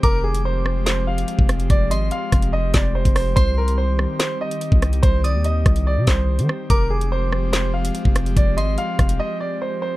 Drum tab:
HH |x--x----x--xx-xx|x-x-x-xx--x--xo-|x--x----x--xx-xx|x-x-x-xx--x--x--|
CP |--------x-------|----------x-----|--------x-------|----------x-----|
SD |------r-o-----r-|------r---o---r-|------r-o-----r-|------r---o---r-|
BD |o------------o--|o-----o---o--o--|o------------o--|o-----o---o-----|

HH |x--x----x--xx-xx|x-x-x-xx--------|
CP |--------x-------|----------------|
SD |------r-o-----r-|------r---------|
BD |o------------o--|o-----o---------|